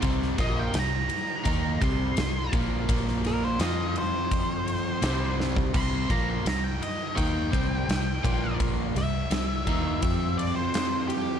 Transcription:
<<
  \new Staff \with { instrumentName = "Lead electric guitar" } { \time 4/4 \key f \major \tempo 4 = 84 r8 ees''16 g''16 bes''4. c'''4 r8 | r8 bes'16 c''16 ees''8 c''2 r8 | c'''8 bes''16 c'''16 bes''16 g''16 ees''8 g''2 | r8 e''2 d''16 c''8. g'8 | }
  \new Staff \with { instrumentName = "Overdriven electric guitar" } { \clef bass \time 4/4 \key f \major <c g c'>8 <bes, f bes>8 <c g>8 r8 <ees bes ees'>8 <c g c'>8 <c g>8 <bes, f bes>8 | <bes, f bes>4 <f c' f'>2 <c g c'>4 | <c g c'>8 <bes, f bes>8 <c g>8 r8 <ees bes ees'>8 <c g c'>8 <c g>8 <bes, f bes>8~ | <bes, f bes>8 <c g>8 <c g>8 <ees bes ees'>8 <f c' f'>2 | }
  \new Staff \with { instrumentName = "Fingered electric bass" } { \clef bass \time 4/4 \key f \major c,8 bes,,8 c,8 r8 ees,8 c,8 c,8 bes,,8 | bes,,4 f,2 c,4 | c,8 bes,,8 c,8 r8 ees,8 c,8 c,8 bes,,8~ | bes,,8 c,8 c,8 ees,8 f,2 | }
  \new DrumStaff \with { instrumentName = "Drums" } \drummode { \time 4/4 <bd cymr>16 sn16 <bd cymr sn>8 <cymr sn>8 cymr8 <bd cymr>8 <bd cymr>8 <cymr sn>8 <bd cymr>8 | <bd cymr>16 sn16 <cymr sn>8 <cymr sn>8 cymr8 <bd cymr>8 cymr8 <cymr sn>8 sn16 bd16 | <cymc bd>8 <bd cymr>8 <cymr sn>8 cymr8 <bd cymr>8 <bd cymr>8 <cymr sn>8 <bd cymr>8 | <bd cymr>8 <cymr sn>8 <cymr sn>8 <bd cymr>8 <bd cymr>8 cymr8 <cymr sn>8 cymr8 | }
>>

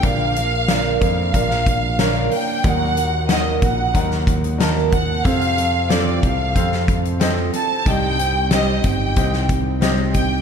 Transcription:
<<
  \new Staff \with { instrumentName = "Violin section" } { \time 4/4 \key bes \major \tempo 4 = 92 f''4. f''2 g''8 | ges''4 ees''8 ges''4 r4 ges''8 | f''4 d''8 f''4 r4 a''8 | g''4 ees''8 g''4 r4 g''8 | }
  \new Staff \with { instrumentName = "Upright piano" } { \time 4/4 \key bes \major <d' bes' f''>8 r8 <d' bes' f''>8 r8 <d' bes' f''>8 r8 <des' d' bes' f''>8 r8 | <ees' bes' ges''>8 r8 <ees' bes' ges''>8 r8 <ees' bes' ges''>8 r8 <ees' bes' a''>8 r8 | <c' a' f''>8 r8 <c' a' f''>8 r8 <c' a' f''>8 r8 <c' a' ees''>8 r8 | <c' g' ees''>8 r8 <c' g' ees''>8 r8 <c' g' ees''>8 r8 <c' g' ees''>8 r8 | }
  \new Staff \with { instrumentName = "Upright piano" } { \clef bass \time 4/4 \key bes \major r1 | bes,4. r2 r8 | c4. r2 r8 | g,4. r2 r8 | }
  \new Staff \with { instrumentName = "Steel-string acoustic guitar" } { \time 4/4 \key bes \major <bes, d f bes d' bes'>8 <f bes d' bes'>8 <bes, d f bes d' bes'>8 <f bes d' bes'>8 <f bes d' bes'>4 <bes, d f bes d' bes'>8 <f bes d' bes'>8 | <ees ges bes ges' bes'>8 <bes ges' bes'>8 <ees ges bes ges' bes'>8 <bes ges' bes'>8 <ges bes ges' bes'>4 <ees ges bes ges' bes'>8 <bes ges' bes'>8 | <f c' f' a'>8 <c' f' a'>8 <f c' f' a'>8 <c' f' a'>8 <f c' f' a'>4 <f c' f' a'>8 <c' f' a'>8 | <c g c' ees' g'>8 <c' ees' g'>8 <c g c' ees' g'>8 <c' ees' g'>8 <g c' ees' g'>4 <c g c' ees' g'>8 <c' ees' g'>8 | }
  \new Staff \with { instrumentName = "Picked electric bass" } { \clef bass \time 4/4 \key bes \major bes,,4. f,8 bes,,4. r8 | ees,4. bes,,8 ees,2 | f,4. c,8 f,4. r8 | c,4. g,,8 c,2 | }
  \new DrumStaff \with { instrumentName = "Drums" } \drummode { \time 4/4 <hh bd>8 hh8 <hh sn>8 <hh bd>8 <hh bd>16 sn16 <hh bd>8 <hh sn>8 hho8 | <hh bd>8 hh8 <hh sn>8 <hh bd>8 <hh bd>16 sn16 <hh bd>16 hh16 <hh sn>8 <hh bd>8 | <hh bd>16 hh16 hh8 <hh sn>8 <hh bd>8 <hh bd>16 sn16 <hh bd>16 hh16 <hh sn>8 hh8 | <hh bd>8 hh8 <hh sn>8 <hh bd>8 <hh bd>16 sn16 <hh bd>8 <hh sn>8 <hh bd>8 | }
>>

